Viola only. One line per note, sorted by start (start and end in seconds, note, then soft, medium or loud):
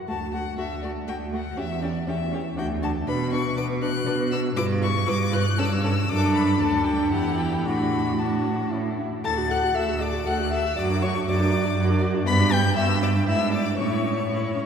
0.08 0.16 A3 medium
0.33 0.41 A3 medium
0.58 0.66 A3 medium
0.83 0.91 A3 medium
1.07 1.15 A3 medium
1.32 1.40 A3 medium
1.57 1.65 C#4 medium
1.82 1.90 C#4 medium
2.07 2.15 C#4 medium
2.32 2.40 C#4 medium
2.57 2.65 D4 medium
2.82 2.90 D4 medium
3.07 3.15 D4 medium
3.32 3.40 D4 medium
3.56 3.64 D4 medium
3.82 3.90 D4 medium
4.06 4.14 D4 medium
4.32 4.40 D4 medium
4.57 4.65 E4 medium
4.82 4.90 E4 medium
5.06 5.14 E4 medium
5.32 5.40 E4 medium
5.58 5.66 C#4 medium
5.83 5.91 C#4 medium
6.08 6.56 D4 medium
6.60 7.13 D4 medium
7.12 7.66 E4 medium
7.65 8.18 D4 medium
8.19 8.71 D4 medium
8.73 8.81 C#4 medium
9.25 9.39 A4 medium
9.38 9.52 F#4 medium
9.51 9.65 A4 medium
9.63 9.75 F#4 medium
9.76 9.90 A4 medium
9.89 10.03 F#4 medium
10.01 10.15 A4 medium
10.13 10.26 F#4 medium
10.27 10.41 A4 medium
10.39 10.53 F#4 medium
10.52 10.66 A4 medium
10.65 10.77 F#4 medium
10.77 10.91 F#4 medium
10.90 11.04 D4 medium
11.03 11.16 F#4 medium
11.15 11.26 D4 medium
11.27 11.41 F#4 medium
11.40 11.54 D4 medium
11.52 11.66 F#4 medium
11.64 11.77 D4 medium
11.78 11.91 F#4 medium
11.90 12.03 D4 medium
12.02 12.16 F#4 medium
12.14 12.26 D4 medium
12.27 12.41 B3 medium
12.40 12.53 D4 medium
12.52 12.66 B3 medium
12.64 12.77 D4 medium
12.77 12.90 B3 medium
12.89 13.03 D4 medium
13.02 13.16 B3 medium
13.14 13.27 D4 medium
13.27 13.42 E4 medium
13.40 13.54 D4 medium
13.53 13.67 E4 medium
13.66 13.78 D4 medium
13.79 13.93 C#4 medium
13.91 14.05 E4 medium
14.04 14.18 C#4 medium
14.17 14.29 E4 medium
14.30 14.54 E4 medium
14.55 14.63 C#4 medium